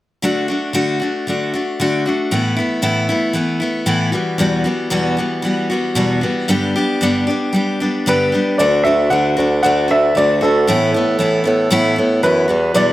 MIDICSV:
0, 0, Header, 1, 4, 480
1, 0, Start_track
1, 0, Key_signature, 2, "major"
1, 0, Tempo, 521286
1, 215, Time_signature, 4, 2, 24, 8
1, 11903, End_track
2, 0, Start_track
2, 0, Title_t, "Grand piano"
2, 0, Program_c, 0, 0
2, 7446, Note_on_c, 0, 71, 81
2, 7901, Note_on_c, 0, 74, 83
2, 7930, Note_off_c, 0, 71, 0
2, 8136, Note_on_c, 0, 76, 86
2, 8151, Note_off_c, 0, 74, 0
2, 8364, Note_off_c, 0, 76, 0
2, 8381, Note_on_c, 0, 78, 93
2, 8850, Note_off_c, 0, 78, 0
2, 8864, Note_on_c, 0, 78, 92
2, 9087, Note_off_c, 0, 78, 0
2, 9124, Note_on_c, 0, 76, 85
2, 9361, Note_off_c, 0, 76, 0
2, 9364, Note_on_c, 0, 74, 85
2, 9599, Note_on_c, 0, 69, 71
2, 9600, Note_off_c, 0, 74, 0
2, 10989, Note_off_c, 0, 69, 0
2, 11264, Note_on_c, 0, 71, 82
2, 11746, Note_on_c, 0, 74, 92
2, 11753, Note_off_c, 0, 71, 0
2, 11903, Note_off_c, 0, 74, 0
2, 11903, End_track
3, 0, Start_track
3, 0, Title_t, "Steel-string acoustic guitar"
3, 0, Program_c, 1, 25
3, 206, Note_on_c, 1, 50, 71
3, 214, Note_on_c, 1, 57, 72
3, 219, Note_on_c, 1, 62, 76
3, 228, Note_on_c, 1, 66, 81
3, 432, Note_off_c, 1, 66, 0
3, 443, Note_on_c, 1, 66, 58
3, 446, Note_off_c, 1, 62, 0
3, 451, Note_off_c, 1, 50, 0
3, 455, Note_off_c, 1, 57, 0
3, 457, Note_on_c, 1, 62, 50
3, 472, Note_on_c, 1, 57, 41
3, 673, Note_off_c, 1, 62, 0
3, 674, Note_on_c, 1, 50, 71
3, 675, Note_off_c, 1, 57, 0
3, 679, Note_off_c, 1, 66, 0
3, 684, Note_on_c, 1, 62, 72
3, 686, Note_on_c, 1, 57, 83
3, 691, Note_on_c, 1, 66, 84
3, 906, Note_off_c, 1, 66, 0
3, 917, Note_on_c, 1, 66, 54
3, 925, Note_off_c, 1, 62, 0
3, 926, Note_off_c, 1, 50, 0
3, 932, Note_off_c, 1, 57, 0
3, 936, Note_on_c, 1, 62, 47
3, 949, Note_on_c, 1, 57, 43
3, 1168, Note_off_c, 1, 57, 0
3, 1168, Note_off_c, 1, 66, 0
3, 1169, Note_on_c, 1, 50, 50
3, 1177, Note_off_c, 1, 62, 0
3, 1179, Note_on_c, 1, 57, 55
3, 1189, Note_on_c, 1, 62, 54
3, 1195, Note_on_c, 1, 66, 60
3, 1403, Note_off_c, 1, 66, 0
3, 1414, Note_off_c, 1, 50, 0
3, 1414, Note_on_c, 1, 66, 51
3, 1416, Note_off_c, 1, 62, 0
3, 1419, Note_off_c, 1, 57, 0
3, 1427, Note_on_c, 1, 62, 45
3, 1436, Note_on_c, 1, 57, 38
3, 1654, Note_on_c, 1, 50, 74
3, 1655, Note_off_c, 1, 57, 0
3, 1657, Note_off_c, 1, 66, 0
3, 1658, Note_off_c, 1, 62, 0
3, 1666, Note_on_c, 1, 57, 75
3, 1669, Note_on_c, 1, 62, 71
3, 1672, Note_on_c, 1, 66, 75
3, 1883, Note_off_c, 1, 66, 0
3, 1894, Note_on_c, 1, 66, 48
3, 1896, Note_off_c, 1, 62, 0
3, 1897, Note_off_c, 1, 50, 0
3, 1903, Note_off_c, 1, 57, 0
3, 1907, Note_on_c, 1, 62, 45
3, 1920, Note_on_c, 1, 57, 42
3, 2124, Note_off_c, 1, 57, 0
3, 2130, Note_on_c, 1, 45, 66
3, 2133, Note_on_c, 1, 52, 68
3, 2135, Note_on_c, 1, 57, 82
3, 2137, Note_off_c, 1, 66, 0
3, 2138, Note_off_c, 1, 62, 0
3, 2142, Note_on_c, 1, 59, 73
3, 2151, Note_on_c, 1, 64, 81
3, 2351, Note_off_c, 1, 64, 0
3, 2362, Note_on_c, 1, 64, 61
3, 2369, Note_off_c, 1, 59, 0
3, 2375, Note_off_c, 1, 45, 0
3, 2377, Note_off_c, 1, 52, 0
3, 2378, Note_off_c, 1, 57, 0
3, 2380, Note_on_c, 1, 59, 54
3, 2394, Note_on_c, 1, 57, 39
3, 2590, Note_off_c, 1, 57, 0
3, 2597, Note_off_c, 1, 59, 0
3, 2597, Note_off_c, 1, 64, 0
3, 2597, Note_on_c, 1, 45, 65
3, 2602, Note_on_c, 1, 52, 75
3, 2602, Note_on_c, 1, 57, 78
3, 2608, Note_on_c, 1, 59, 83
3, 2608, Note_on_c, 1, 64, 80
3, 2832, Note_off_c, 1, 64, 0
3, 2843, Note_on_c, 1, 64, 60
3, 2844, Note_off_c, 1, 59, 0
3, 2849, Note_off_c, 1, 45, 0
3, 2852, Note_off_c, 1, 52, 0
3, 2852, Note_off_c, 1, 57, 0
3, 2855, Note_on_c, 1, 59, 47
3, 2868, Note_on_c, 1, 57, 46
3, 3068, Note_off_c, 1, 57, 0
3, 3070, Note_on_c, 1, 52, 55
3, 3075, Note_off_c, 1, 59, 0
3, 3079, Note_on_c, 1, 57, 58
3, 3086, Note_on_c, 1, 59, 63
3, 3089, Note_off_c, 1, 64, 0
3, 3100, Note_on_c, 1, 64, 60
3, 3302, Note_off_c, 1, 64, 0
3, 3313, Note_on_c, 1, 64, 45
3, 3319, Note_off_c, 1, 59, 0
3, 3327, Note_off_c, 1, 52, 0
3, 3330, Note_on_c, 1, 59, 49
3, 3331, Note_off_c, 1, 57, 0
3, 3343, Note_on_c, 1, 57, 40
3, 3551, Note_off_c, 1, 59, 0
3, 3554, Note_on_c, 1, 45, 66
3, 3555, Note_off_c, 1, 57, 0
3, 3557, Note_on_c, 1, 52, 80
3, 3558, Note_off_c, 1, 64, 0
3, 3562, Note_on_c, 1, 59, 83
3, 3566, Note_on_c, 1, 57, 74
3, 3569, Note_on_c, 1, 64, 87
3, 3790, Note_off_c, 1, 64, 0
3, 3791, Note_off_c, 1, 59, 0
3, 3794, Note_on_c, 1, 66, 52
3, 3802, Note_on_c, 1, 59, 54
3, 3808, Note_off_c, 1, 57, 0
3, 3809, Note_off_c, 1, 45, 0
3, 3810, Note_off_c, 1, 52, 0
3, 3812, Note_on_c, 1, 55, 45
3, 3821, Note_on_c, 1, 52, 39
3, 4034, Note_off_c, 1, 52, 0
3, 4034, Note_on_c, 1, 40, 74
3, 4040, Note_off_c, 1, 55, 0
3, 4042, Note_off_c, 1, 59, 0
3, 4043, Note_on_c, 1, 47, 73
3, 4045, Note_on_c, 1, 52, 66
3, 4049, Note_off_c, 1, 66, 0
3, 4051, Note_on_c, 1, 55, 74
3, 4054, Note_on_c, 1, 59, 80
3, 4060, Note_on_c, 1, 66, 71
3, 4262, Note_off_c, 1, 66, 0
3, 4272, Note_off_c, 1, 59, 0
3, 4273, Note_on_c, 1, 66, 58
3, 4277, Note_off_c, 1, 55, 0
3, 4283, Note_on_c, 1, 59, 52
3, 4288, Note_on_c, 1, 55, 54
3, 4290, Note_off_c, 1, 40, 0
3, 4290, Note_off_c, 1, 52, 0
3, 4294, Note_off_c, 1, 47, 0
3, 4301, Note_on_c, 1, 52, 47
3, 4510, Note_off_c, 1, 52, 0
3, 4514, Note_on_c, 1, 40, 74
3, 4515, Note_off_c, 1, 59, 0
3, 4518, Note_on_c, 1, 47, 74
3, 4519, Note_off_c, 1, 55, 0
3, 4521, Note_on_c, 1, 52, 75
3, 4523, Note_off_c, 1, 66, 0
3, 4526, Note_on_c, 1, 59, 76
3, 4530, Note_on_c, 1, 55, 79
3, 4534, Note_on_c, 1, 66, 89
3, 4748, Note_off_c, 1, 66, 0
3, 4759, Note_on_c, 1, 66, 50
3, 4761, Note_off_c, 1, 59, 0
3, 4767, Note_off_c, 1, 55, 0
3, 4770, Note_off_c, 1, 40, 0
3, 4772, Note_off_c, 1, 47, 0
3, 4773, Note_on_c, 1, 59, 57
3, 4774, Note_off_c, 1, 52, 0
3, 4778, Note_on_c, 1, 55, 43
3, 4788, Note_on_c, 1, 52, 46
3, 4982, Note_off_c, 1, 52, 0
3, 4993, Note_on_c, 1, 52, 54
3, 4996, Note_off_c, 1, 55, 0
3, 5005, Note_off_c, 1, 59, 0
3, 5007, Note_on_c, 1, 55, 56
3, 5013, Note_off_c, 1, 66, 0
3, 5016, Note_on_c, 1, 59, 56
3, 5030, Note_on_c, 1, 66, 57
3, 5234, Note_off_c, 1, 66, 0
3, 5245, Note_on_c, 1, 66, 50
3, 5247, Note_off_c, 1, 59, 0
3, 5250, Note_off_c, 1, 52, 0
3, 5252, Note_off_c, 1, 55, 0
3, 5258, Note_on_c, 1, 59, 45
3, 5263, Note_on_c, 1, 55, 46
3, 5277, Note_on_c, 1, 52, 41
3, 5478, Note_off_c, 1, 55, 0
3, 5479, Note_off_c, 1, 52, 0
3, 5480, Note_on_c, 1, 40, 68
3, 5482, Note_on_c, 1, 47, 76
3, 5487, Note_off_c, 1, 59, 0
3, 5489, Note_on_c, 1, 55, 82
3, 5490, Note_on_c, 1, 52, 81
3, 5491, Note_off_c, 1, 66, 0
3, 5498, Note_on_c, 1, 59, 77
3, 5502, Note_on_c, 1, 66, 79
3, 5708, Note_off_c, 1, 66, 0
3, 5719, Note_on_c, 1, 66, 47
3, 5727, Note_off_c, 1, 55, 0
3, 5727, Note_off_c, 1, 59, 0
3, 5734, Note_off_c, 1, 40, 0
3, 5735, Note_off_c, 1, 47, 0
3, 5736, Note_off_c, 1, 52, 0
3, 5738, Note_on_c, 1, 55, 42
3, 5738, Note_on_c, 1, 59, 52
3, 5747, Note_on_c, 1, 52, 41
3, 5965, Note_off_c, 1, 55, 0
3, 5968, Note_on_c, 1, 43, 72
3, 5970, Note_off_c, 1, 59, 0
3, 5972, Note_off_c, 1, 52, 0
3, 5972, Note_on_c, 1, 50, 80
3, 5973, Note_off_c, 1, 66, 0
3, 5976, Note_on_c, 1, 55, 81
3, 5981, Note_on_c, 1, 59, 79
3, 5983, Note_on_c, 1, 62, 72
3, 5986, Note_on_c, 1, 67, 91
3, 6210, Note_off_c, 1, 67, 0
3, 6218, Note_off_c, 1, 43, 0
3, 6219, Note_off_c, 1, 62, 0
3, 6220, Note_off_c, 1, 50, 0
3, 6221, Note_on_c, 1, 67, 65
3, 6222, Note_off_c, 1, 55, 0
3, 6224, Note_off_c, 1, 59, 0
3, 6230, Note_on_c, 1, 62, 56
3, 6242, Note_on_c, 1, 59, 51
3, 6247, Note_on_c, 1, 55, 47
3, 6453, Note_on_c, 1, 43, 76
3, 6457, Note_off_c, 1, 55, 0
3, 6459, Note_off_c, 1, 59, 0
3, 6461, Note_on_c, 1, 50, 68
3, 6463, Note_off_c, 1, 62, 0
3, 6464, Note_off_c, 1, 67, 0
3, 6468, Note_on_c, 1, 55, 74
3, 6470, Note_on_c, 1, 59, 84
3, 6474, Note_on_c, 1, 62, 82
3, 6475, Note_on_c, 1, 67, 85
3, 6682, Note_off_c, 1, 67, 0
3, 6691, Note_off_c, 1, 62, 0
3, 6693, Note_on_c, 1, 67, 55
3, 6700, Note_off_c, 1, 43, 0
3, 6702, Note_on_c, 1, 62, 45
3, 6704, Note_off_c, 1, 50, 0
3, 6706, Note_off_c, 1, 59, 0
3, 6708, Note_off_c, 1, 55, 0
3, 6717, Note_on_c, 1, 59, 48
3, 6726, Note_on_c, 1, 55, 45
3, 6919, Note_off_c, 1, 55, 0
3, 6930, Note_on_c, 1, 55, 55
3, 6935, Note_off_c, 1, 59, 0
3, 6937, Note_off_c, 1, 62, 0
3, 6940, Note_off_c, 1, 67, 0
3, 6946, Note_on_c, 1, 59, 57
3, 6948, Note_on_c, 1, 62, 55
3, 6960, Note_on_c, 1, 67, 59
3, 7173, Note_off_c, 1, 67, 0
3, 7179, Note_off_c, 1, 55, 0
3, 7182, Note_off_c, 1, 62, 0
3, 7185, Note_on_c, 1, 67, 49
3, 7186, Note_off_c, 1, 59, 0
3, 7193, Note_on_c, 1, 62, 49
3, 7198, Note_on_c, 1, 59, 45
3, 7211, Note_on_c, 1, 55, 40
3, 7422, Note_off_c, 1, 55, 0
3, 7422, Note_on_c, 1, 43, 71
3, 7426, Note_off_c, 1, 59, 0
3, 7426, Note_off_c, 1, 67, 0
3, 7430, Note_off_c, 1, 62, 0
3, 7432, Note_on_c, 1, 50, 77
3, 7433, Note_on_c, 1, 55, 64
3, 7437, Note_on_c, 1, 59, 83
3, 7439, Note_on_c, 1, 62, 86
3, 7446, Note_on_c, 1, 67, 79
3, 7651, Note_off_c, 1, 67, 0
3, 7662, Note_on_c, 1, 67, 48
3, 7663, Note_off_c, 1, 62, 0
3, 7665, Note_off_c, 1, 43, 0
3, 7669, Note_off_c, 1, 50, 0
3, 7670, Note_off_c, 1, 55, 0
3, 7670, Note_off_c, 1, 59, 0
3, 7674, Note_on_c, 1, 62, 43
3, 7681, Note_on_c, 1, 59, 42
3, 7689, Note_on_c, 1, 55, 41
3, 7904, Note_off_c, 1, 67, 0
3, 7908, Note_off_c, 1, 55, 0
3, 7910, Note_off_c, 1, 62, 0
3, 7911, Note_on_c, 1, 50, 71
3, 7913, Note_off_c, 1, 59, 0
3, 7917, Note_on_c, 1, 57, 77
3, 7920, Note_on_c, 1, 62, 78
3, 7923, Note_on_c, 1, 66, 81
3, 8134, Note_off_c, 1, 66, 0
3, 8145, Note_on_c, 1, 66, 50
3, 8149, Note_off_c, 1, 50, 0
3, 8151, Note_off_c, 1, 62, 0
3, 8152, Note_off_c, 1, 57, 0
3, 8162, Note_on_c, 1, 62, 49
3, 8172, Note_on_c, 1, 57, 45
3, 8377, Note_off_c, 1, 57, 0
3, 8382, Note_on_c, 1, 50, 54
3, 8385, Note_off_c, 1, 66, 0
3, 8388, Note_on_c, 1, 57, 52
3, 8389, Note_off_c, 1, 62, 0
3, 8401, Note_on_c, 1, 62, 60
3, 8404, Note_on_c, 1, 66, 56
3, 8614, Note_off_c, 1, 66, 0
3, 8623, Note_off_c, 1, 50, 0
3, 8625, Note_on_c, 1, 66, 55
3, 8627, Note_off_c, 1, 57, 0
3, 8629, Note_off_c, 1, 62, 0
3, 8640, Note_on_c, 1, 62, 44
3, 8655, Note_on_c, 1, 57, 44
3, 8865, Note_off_c, 1, 66, 0
3, 8868, Note_off_c, 1, 57, 0
3, 8868, Note_on_c, 1, 50, 63
3, 8872, Note_off_c, 1, 62, 0
3, 8879, Note_on_c, 1, 57, 72
3, 8886, Note_on_c, 1, 62, 66
3, 8895, Note_on_c, 1, 66, 75
3, 9085, Note_off_c, 1, 66, 0
3, 9096, Note_on_c, 1, 66, 47
3, 9098, Note_off_c, 1, 62, 0
3, 9106, Note_off_c, 1, 50, 0
3, 9109, Note_off_c, 1, 57, 0
3, 9109, Note_on_c, 1, 62, 42
3, 9120, Note_on_c, 1, 57, 36
3, 9340, Note_off_c, 1, 66, 0
3, 9345, Note_on_c, 1, 50, 54
3, 9346, Note_off_c, 1, 62, 0
3, 9352, Note_off_c, 1, 57, 0
3, 9363, Note_on_c, 1, 57, 55
3, 9367, Note_on_c, 1, 62, 52
3, 9376, Note_on_c, 1, 66, 69
3, 9574, Note_off_c, 1, 66, 0
3, 9584, Note_off_c, 1, 50, 0
3, 9585, Note_on_c, 1, 66, 51
3, 9593, Note_off_c, 1, 57, 0
3, 9595, Note_off_c, 1, 62, 0
3, 9604, Note_on_c, 1, 62, 44
3, 9617, Note_on_c, 1, 57, 39
3, 9823, Note_off_c, 1, 66, 0
3, 9827, Note_off_c, 1, 57, 0
3, 9829, Note_on_c, 1, 45, 65
3, 9833, Note_off_c, 1, 62, 0
3, 9835, Note_on_c, 1, 52, 68
3, 9838, Note_on_c, 1, 57, 77
3, 9846, Note_on_c, 1, 59, 76
3, 9849, Note_on_c, 1, 64, 72
3, 10065, Note_off_c, 1, 45, 0
3, 10065, Note_off_c, 1, 64, 0
3, 10068, Note_off_c, 1, 52, 0
3, 10070, Note_off_c, 1, 57, 0
3, 10074, Note_off_c, 1, 59, 0
3, 10076, Note_on_c, 1, 64, 54
3, 10094, Note_on_c, 1, 59, 51
3, 10100, Note_on_c, 1, 57, 44
3, 10301, Note_off_c, 1, 57, 0
3, 10301, Note_on_c, 1, 52, 64
3, 10308, Note_off_c, 1, 59, 0
3, 10308, Note_off_c, 1, 64, 0
3, 10312, Note_on_c, 1, 57, 63
3, 10319, Note_on_c, 1, 59, 59
3, 10330, Note_on_c, 1, 64, 64
3, 10521, Note_off_c, 1, 64, 0
3, 10532, Note_on_c, 1, 64, 56
3, 10536, Note_off_c, 1, 59, 0
3, 10540, Note_off_c, 1, 52, 0
3, 10546, Note_off_c, 1, 57, 0
3, 10547, Note_on_c, 1, 59, 53
3, 10562, Note_on_c, 1, 57, 46
3, 10775, Note_off_c, 1, 64, 0
3, 10776, Note_off_c, 1, 57, 0
3, 10778, Note_on_c, 1, 45, 74
3, 10780, Note_on_c, 1, 52, 78
3, 10782, Note_off_c, 1, 59, 0
3, 10788, Note_on_c, 1, 57, 85
3, 10792, Note_on_c, 1, 59, 89
3, 10796, Note_on_c, 1, 64, 91
3, 11002, Note_off_c, 1, 64, 0
3, 11013, Note_on_c, 1, 64, 50
3, 11018, Note_off_c, 1, 45, 0
3, 11019, Note_off_c, 1, 52, 0
3, 11022, Note_off_c, 1, 59, 0
3, 11023, Note_off_c, 1, 57, 0
3, 11033, Note_on_c, 1, 59, 45
3, 11039, Note_on_c, 1, 57, 42
3, 11255, Note_off_c, 1, 64, 0
3, 11257, Note_off_c, 1, 57, 0
3, 11261, Note_off_c, 1, 59, 0
3, 11261, Note_on_c, 1, 52, 54
3, 11268, Note_on_c, 1, 57, 62
3, 11272, Note_on_c, 1, 59, 59
3, 11286, Note_on_c, 1, 64, 58
3, 11486, Note_off_c, 1, 64, 0
3, 11489, Note_off_c, 1, 59, 0
3, 11490, Note_on_c, 1, 66, 44
3, 11498, Note_off_c, 1, 52, 0
3, 11500, Note_on_c, 1, 59, 42
3, 11502, Note_off_c, 1, 57, 0
3, 11505, Note_on_c, 1, 55, 43
3, 11512, Note_on_c, 1, 52, 37
3, 11732, Note_off_c, 1, 66, 0
3, 11733, Note_off_c, 1, 52, 0
3, 11735, Note_on_c, 1, 40, 71
3, 11736, Note_off_c, 1, 55, 0
3, 11737, Note_on_c, 1, 47, 81
3, 11738, Note_off_c, 1, 59, 0
3, 11744, Note_on_c, 1, 52, 73
3, 11747, Note_on_c, 1, 55, 78
3, 11751, Note_on_c, 1, 59, 76
3, 11755, Note_on_c, 1, 66, 80
3, 11903, Note_off_c, 1, 40, 0
3, 11903, Note_off_c, 1, 47, 0
3, 11903, Note_off_c, 1, 52, 0
3, 11903, Note_off_c, 1, 55, 0
3, 11903, Note_off_c, 1, 59, 0
3, 11903, Note_off_c, 1, 66, 0
3, 11903, End_track
4, 0, Start_track
4, 0, Title_t, "Bassoon"
4, 0, Program_c, 2, 70
4, 7908, Note_on_c, 2, 38, 76
4, 8112, Note_off_c, 2, 38, 0
4, 8152, Note_on_c, 2, 38, 77
4, 8354, Note_off_c, 2, 38, 0
4, 8394, Note_on_c, 2, 38, 73
4, 8595, Note_off_c, 2, 38, 0
4, 8636, Note_on_c, 2, 38, 88
4, 8836, Note_off_c, 2, 38, 0
4, 8880, Note_on_c, 2, 38, 83
4, 9078, Note_off_c, 2, 38, 0
4, 9119, Note_on_c, 2, 38, 74
4, 9317, Note_off_c, 2, 38, 0
4, 9359, Note_on_c, 2, 38, 78
4, 9557, Note_off_c, 2, 38, 0
4, 9599, Note_on_c, 2, 38, 90
4, 9797, Note_off_c, 2, 38, 0
4, 9835, Note_on_c, 2, 45, 93
4, 10034, Note_off_c, 2, 45, 0
4, 10066, Note_on_c, 2, 45, 80
4, 10269, Note_off_c, 2, 45, 0
4, 10308, Note_on_c, 2, 45, 76
4, 10509, Note_off_c, 2, 45, 0
4, 10556, Note_on_c, 2, 45, 85
4, 10754, Note_off_c, 2, 45, 0
4, 10789, Note_on_c, 2, 45, 80
4, 10989, Note_off_c, 2, 45, 0
4, 11034, Note_on_c, 2, 45, 81
4, 11232, Note_off_c, 2, 45, 0
4, 11267, Note_on_c, 2, 42, 86
4, 11467, Note_off_c, 2, 42, 0
4, 11506, Note_on_c, 2, 40, 79
4, 11707, Note_off_c, 2, 40, 0
4, 11733, Note_on_c, 2, 40, 86
4, 11903, Note_off_c, 2, 40, 0
4, 11903, End_track
0, 0, End_of_file